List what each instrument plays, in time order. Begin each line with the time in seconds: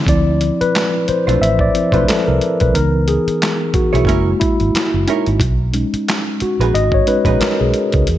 0.07 fingered electric bass D2, tine electric piano F3 C4 E4 D5, kick, closed hi-hat
0.41 closed hi-hat
0.61 tine electric piano B4, muted fingered electric bass stroke, closed hi-hat
0.75 snare, clap, closed hi-hat
1.08 tine electric piano C5, muted fingered electric bass stroke, closed hi-hat
1.27 fingered electric bass B1, hollow-body jazz guitar A3 D4 F4 C5, closed hi-hat
1.41 fingered electric bass A1, tine electric piano E5, closed hi-hat
1.59 tine electric piano D5, kick
1.74 tine electric piano F3 C4 E4, closed hi-hat
1.92 fingered electric bass B1, hollow-body jazz guitar A3 D4 F4 C5, tine electric piano B4, kick, closed hi-hat
2.08 tine electric piano A4, snare, clap, closed hi-hat
2.27 fingered electric bass C2, tine electric piano A#4
2.41 closed hi-hat
2.60 fingered electric bass B1, tine electric piano B4, kick, closed hi-hat
2.73 fingered electric bass C#2, tine electric piano E3 B3 D#4 A#4, closed hi-hat
3.08 tine electric piano G#4, closed hi-hat
3.27 muted fingered electric bass stroke, closed hi-hat
3.42 snare, clap, closed hi-hat
3.74 tine electric piano F#4, muted fingered electric bass stroke, kick, closed hi-hat
3.93 fingered electric bass B1, hollow-body jazz guitar B3 E4 G#4 C#5, closed hi-hat
4.05 fingered electric bass F#1, tine electric piano G#3 A#3 E4, hollow-body jazz guitar C#4 E4 A#4 C#5, kick, closed hi-hat
4.40 tine electric piano E4, kick, closed hi-hat
4.60 fingered electric bass G#1, closed hi-hat
4.74 muted fingered electric bass stroke, snare, clap, closed hi-hat
4.94 fingered electric bass F#1
5.07 hollow-body jazz guitar C#4 E4 A#4 C#5, tine electric piano D#4, closed hi-hat
5.26 fingered electric bass G#1, closed hi-hat
5.40 fingered electric bass B1, kick, closed hi-hat
5.73 tine electric piano G#3 C#4 D#4, closed hi-hat
5.94 muted fingered electric bass stroke, closed hi-hat
6.08 snare, clap, closed hi-hat
6.40 tine electric piano F#4, muted fingered electric bass stroke, closed hi-hat
6.60 fingered electric bass A#1, hollow-body jazz guitar B3 D#4 G#4 B4, closed hi-hat
6.74 fingered electric bass G#1, tine electric piano D#5, closed hi-hat
6.92 tine electric piano C#5, kick
7.07 tine electric piano G#3 C#4 D#4 B4, closed hi-hat
7.25 fingered electric bass A#1, hollow-body jazz guitar B3 D#4 G#4 B4, kick, closed hi-hat
7.40 tine electric piano A#4, muted fingered electric bass stroke, snare, clap, closed hi-hat
7.60 fingered electric bass B1, tine electric piano G#4
7.74 closed hi-hat
7.92 fingered electric bass C#2, kick, closed hi-hat
8.07 fingered electric bass E2, closed hi-hat